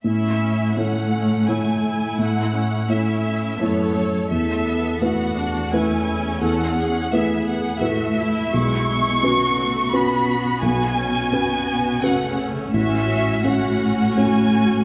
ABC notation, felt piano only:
X:1
M:3/4
L:1/8
Q:1/4=85
K:A
V:1 name="Felt piano"
A,,2 [A,Ec]2 [A,Ec]2 | A,,2 [A,Ec]2 [A,Ec]2 | E,,2 [A,EB]2 [A,EB]2 | E,,2 [A,EB]2 [A,EB]2 |
B,,,2 [CFB]2 [CFB]2 | B,,,2 [CFB]2 [CFB]2 | A,,,2 [CFc]2 [CFc]2 |]